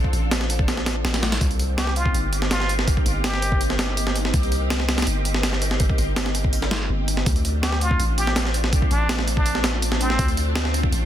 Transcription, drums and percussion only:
0.04 kick
0.13 closed hi-hat
0.31 snare, closed hi-hat
0.41 snare
0.50 closed hi-hat
0.59 kick
0.68 snare, closed hi-hat
0.77 snare
0.86 snare, closed hi-hat
1.05 snare, closed hi-hat
1.14 snare, closed hi-hat
1.23 snare, closed hi-hat
1.32 snare, closed hi-hat
1.41 kick, closed hi-hat
1.51 closed hi-hat
1.59 closed hi-hat
1.78 snare, closed hi-hat
1.87 snare
1.96 closed hi-hat
2.06 kick
2.14 closed hi-hat
2.33 closed hi-hat
2.42 snare
2.51 snare, closed hi-hat
2.60 snare
2.69 closed hi-hat
2.79 snare
2.88 kick, closed hi-hat
2.97 kick
3.06 closed hi-hat
3.24 snare, closed hi-hat
3.34 snare
3.42 closed hi-hat
3.52 kick
3.61 closed hi-hat
3.70 snare
3.79 snare, closed hi-hat
3.97 closed hi-hat
4.07 snare
4.16 closed hi-hat
4.25 snare
4.34 kick, closed hi-hat
4.43 closed hi-hat
4.52 closed hi-hat
4.70 snare, closed hi-hat
4.80 snare
4.89 snare, closed hi-hat
4.98 snare, closed hi-hat
5.02 snare, closed hi-hat
5.07 closed hi-hat
5.25 closed hi-hat
5.34 snare
5.43 snare, closed hi-hat
5.53 snare
5.62 closed hi-hat
5.71 snare
5.80 kick, closed hi-hat
5.90 kick
5.98 closed hi-hat
6.16 snare, closed hi-hat
6.26 snare
6.35 closed hi-hat
6.44 kick
6.53 closed hi-hat
6.62 snare
6.71 snare, closed hi-hat
7.08 closed hi-hat
7.17 snare
7.26 kick, closed hi-hat
7.36 closed hi-hat
7.45 closed hi-hat
7.63 snare, closed hi-hat
7.72 snare
7.81 closed hi-hat
7.91 kick
8.00 closed hi-hat
8.18 closed hi-hat
8.27 snare
8.36 snare, closed hi-hat
8.45 snare
8.54 closed hi-hat
8.64 snare
8.73 kick, closed hi-hat
8.82 kick
8.91 closed hi-hat
9.09 snare, closed hi-hat
9.19 snare
9.28 closed hi-hat
9.37 kick
9.46 closed hi-hat
9.55 snare
9.64 snare, closed hi-hat
9.82 closed hi-hat
9.92 snare
10.01 closed hi-hat
10.10 snare
10.19 kick, closed hi-hat
10.28 closed hi-hat
10.37 closed hi-hat
10.55 snare, closed hi-hat
10.65 snare
10.74 closed hi-hat
10.83 kick
10.92 closed hi-hat

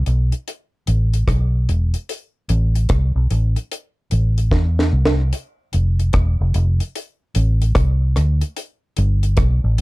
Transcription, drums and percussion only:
0.06 closed hi-hat
0.32 closed hi-hat
0.48 closed hi-hat
0.87 closed hi-hat
1.14 closed hi-hat
1.28 kick, cross-stick, closed hi-hat
1.69 closed hi-hat
1.94 closed hi-hat
2.09 closed hi-hat
2.49 closed hi-hat
2.75 closed hi-hat
2.89 kick, cross-stick, closed hi-hat
3.31 closed hi-hat
3.56 closed hi-hat
3.72 closed hi-hat
4.11 closed hi-hat
4.38 closed hi-hat
4.51 kick, snare
4.79 snare
5.05 snare
5.33 closed hi-hat
5.73 closed hi-hat
6.00 closed hi-hat
6.13 kick, cross-stick, closed hi-hat
6.54 closed hi-hat
6.80 closed hi-hat
6.96 closed hi-hat
7.35 closed hi-hat
7.62 closed hi-hat
7.75 kick, cross-stick, closed hi-hat
8.16 cross-stick, closed hi-hat
8.41 closed hi-hat
8.57 closed hi-hat
8.97 closed hi-hat
9.23 closed hi-hat
9.37 kick, cross-stick, closed hi-hat

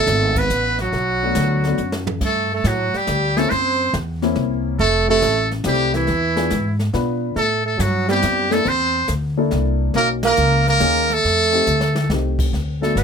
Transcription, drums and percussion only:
0.07 snare, hi-hat pedal
0.36 kick, ride
0.50 hi-hat pedal
0.79 snare
0.93 brush sweep, snare
1.35 snare, hi-hat pedal
1.64 snare
1.78 hi-hat pedal
1.92 snare
2.07 floor tom
2.21 brush sweep, kick, snare, crash
2.64 snare, hi-hat pedal
2.94 snare
3.07 snare, hi-hat pedal
3.37 snare
3.50 brush sweep, snare
3.93 snare, hi-hat pedal
4.22 snare
4.35 snare
4.79 brush sweep, snare
5.22 snare, hi-hat pedal
5.51 snare
5.64 snare, hi-hat pedal
5.94 snare
6.07 brush sweep, snare
6.37 snare
6.50 snare, hi-hat pedal
6.79 snare
6.93 snare
7.36 brush sweep, snare
7.79 snare, hi-hat pedal
8.08 snare
8.22 snare, hi-hat pedal
8.51 snare
8.65 brush sweep, snare
9.08 snare, hi-hat pedal
9.51 snare
9.94 brush sweep, snare
10.23 snare, ride
10.36 hi-hat pedal
10.67 snare
10.80 snare, hi-hat pedal
11.10 snare
11.24 brush sweep, snare
11.66 hi-hat pedal
11.81 snare
11.96 snare
12.10 snare
12.39 kick, crash
12.54 brush sweep, snare
12.83 snare
12.97 snare, hi-hat pedal

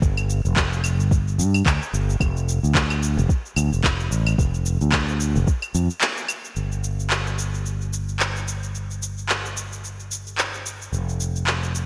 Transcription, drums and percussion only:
0.02 kick, shaker
0.17 claves, shaker
0.30 shaker
0.45 shaker
0.56 kick, clap, shaker
0.73 shaker
0.84 claves, shaker
1.00 shaker
1.11 kick, shaker
1.28 shaker
1.39 shaker
1.54 claves, shaker
1.66 kick, clap, shaker
1.82 shaker
1.94 shaker
2.10 shaker
2.20 kick, claves, shaker
2.37 shaker
2.49 shaker
2.64 shaker
2.75 kick, clap, shaker
2.90 claves, shaker
3.03 shaker
3.19 shaker
3.29 kick, shaker
3.46 shaker
3.56 claves, shaker
3.73 shaker
3.84 kick, clap, shaker
4.00 shaker
4.12 shaker
4.27 claves, shaker
4.38 kick, shaker
4.54 shaker
4.66 shaker
4.81 shaker
4.92 kick, clap, claves, shaker
5.09 shaker
5.20 shaker
5.36 shaker
5.47 kick, shaker
5.62 claves, shaker
5.75 shaker
5.90 shaker
6.01 clap, shaker
6.17 shaker
6.28 claves, shaker
6.45 shaker
6.56 shaker
6.72 shaker
6.84 shaker
7.00 shaker
7.10 clap, shaker
7.27 shaker
7.39 shaker
7.54 shaker
7.66 shaker
7.81 shaker
7.93 shaker
8.09 shaker
8.20 clap, shaker
8.36 shaker
8.48 shaker
8.63 shaker
8.75 shaker
8.91 shaker
9.03 shaker
9.18 shaker
9.29 clap, shaker
9.45 shaker
9.57 shaker
9.73 shaker
9.84 shaker
10.00 shaker
10.11 shaker
10.27 shaker
10.38 clap, shaker
10.54 shaker
10.66 shaker
10.82 shaker
10.93 shaker
11.09 shaker
11.20 shaker
11.36 shaker
11.47 clap, shaker
11.63 shaker
11.75 shaker

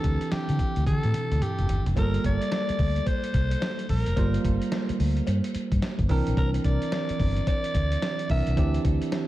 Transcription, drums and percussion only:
0.04 kick, closed hi-hat
0.21 closed hi-hat
0.32 snare, closed hi-hat
0.49 closed hi-hat
0.59 kick, closed hi-hat
0.76 closed hi-hat
0.87 kick, closed hi-hat, high tom
1.03 closed hi-hat, high tom
1.14 closed hi-hat, mid tom
1.32 closed hi-hat, mid tom
1.42 closed hi-hat, mid tom
1.59 closed hi-hat, mid tom
1.69 closed hi-hat, floor tom
1.86 closed hi-hat, floor tom
1.96 kick, closed hi-hat, cowbell
2.14 closed hi-hat
2.24 kick, closed hi-hat
2.42 closed hi-hat
2.51 snare, closed hi-hat, cowbell
2.69 closed hi-hat
2.79 kick, open hi-hat
2.96 closed hi-hat
3.06 kick, closed hi-hat, cowbell
3.24 closed hi-hat
3.34 kick, closed hi-hat
3.51 closed hi-hat
3.61 snare, closed hi-hat, cowbell
3.79 closed hi-hat
3.89 kick, open hi-hat
4.06 closed hi-hat
4.16 kick, closed hi-hat, cowbell
4.34 closed hi-hat
4.45 kick, closed hi-hat
4.62 closed hi-hat
4.72 snare, closed hi-hat, cowbell
4.89 closed hi-hat
5.00 open hi-hat
5.17 closed hi-hat
5.27 closed hi-hat, cowbell
5.44 closed hi-hat
5.55 closed hi-hat
5.72 kick, closed hi-hat
5.82 snare, closed hi-hat, cowbell
5.99 kick, closed hi-hat
6.09 kick, open hi-hat
6.27 closed hi-hat
6.37 kick, closed hi-hat, cowbell
6.54 closed hi-hat
6.64 kick, closed hi-hat
6.82 closed hi-hat
6.92 snare, closed hi-hat, cowbell
7.09 closed hi-hat
7.20 kick, open hi-hat
7.37 closed hi-hat
7.47 kick, closed hi-hat, cowbell
7.64 closed hi-hat
7.75 kick, closed hi-hat
7.92 closed hi-hat
8.02 snare, closed hi-hat, cowbell
8.19 closed hi-hat
8.30 kick, open hi-hat
8.47 closed hi-hat
8.57 kick, closed hi-hat, cowbell
8.74 closed hi-hat
8.85 kick, closed hi-hat
9.02 closed hi-hat
9.12 snare, closed hi-hat, cowbell

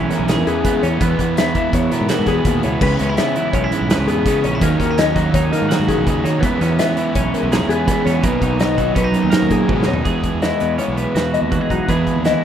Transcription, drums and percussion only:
0.11 snare, closed hi-hat
0.28 snare, closed hi-hat
0.47 closed hi-hat
0.65 kick, closed hi-hat
0.83 closed hi-hat
1.01 kick, closed hi-hat
1.19 kick, closed hi-hat
1.37 snare, closed hi-hat
1.55 kick, closed hi-hat
1.73 kick, snare, closed hi-hat
1.91 snare, closed hi-hat
2.09 snare, closed hi-hat
2.26 kick, snare, closed hi-hat
2.45 kick, closed hi-hat
2.63 closed hi-hat
2.81 kick, crash
2.99 snare, closed hi-hat
3.17 snare, closed hi-hat
3.36 closed hi-hat
3.53 kick, closed hi-hat
3.72 closed hi-hat
3.90 snare, closed hi-hat
4.08 closed hi-hat
4.26 kick, snare, closed hi-hat
4.44 closed hi-hat
4.61 kick, closed hi-hat
4.80 kick, snare, closed hi-hat
4.98 snare, closed hi-hat
5.16 kick, snare, closed hi-hat
5.34 kick, closed hi-hat
5.53 snare, closed hi-hat
5.71 snare, closed hi-hat
5.89 kick, snare, closed hi-hat
6.07 kick, closed hi-hat
6.25 snare, closed hi-hat
6.43 kick, closed hi-hat
6.61 snare, closed hi-hat
6.79 snare, closed hi-hat
6.97 closed hi-hat
7.15 kick, closed hi-hat
7.34 closed hi-hat
7.52 snare, closed hi-hat
7.70 closed hi-hat
7.88 kick, snare, closed hi-hat
8.07 snare, closed hi-hat
8.23 kick, closed hi-hat
8.42 kick, closed hi-hat
8.59 snare, closed hi-hat
8.78 kick, closed hi-hat
8.96 kick, snare, closed hi-hat
9.14 closed hi-hat
9.32 snare, closed hi-hat
9.50 kick, closed hi-hat
9.69 kick, high tom
9.82 snare
9.94 floor tom
10.05 kick, closed hi-hat
10.24 kick, closed hi-hat
10.42 snare, closed hi-hat
10.60 closed hi-hat
10.78 closed hi-hat
10.97 closed hi-hat
11.16 snare, closed hi-hat
11.34 closed hi-hat
11.52 kick, closed hi-hat
11.70 kick, closed hi-hat
11.89 kick, closed hi-hat
12.07 kick, closed hi-hat
12.25 snare, closed hi-hat

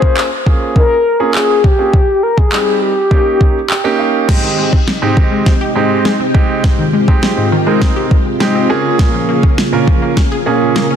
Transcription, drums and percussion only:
0.02 kick
0.17 clap
0.46 kick
0.76 kick
1.35 clap
1.64 kick
1.93 kick
2.38 kick
2.52 clap
3.11 kick
3.41 kick
3.70 clap
4.29 kick, snare, crash
4.73 kick
4.88 snare
5.17 kick
5.46 kick, snare
6.05 snare
6.35 kick
6.64 kick, snare
7.08 kick
7.23 snare
7.82 kick, snare
8.11 kick
8.40 snare
8.99 kick, snare
9.43 kick
9.58 snare
9.88 kick
10.17 kick, snare
10.76 snare

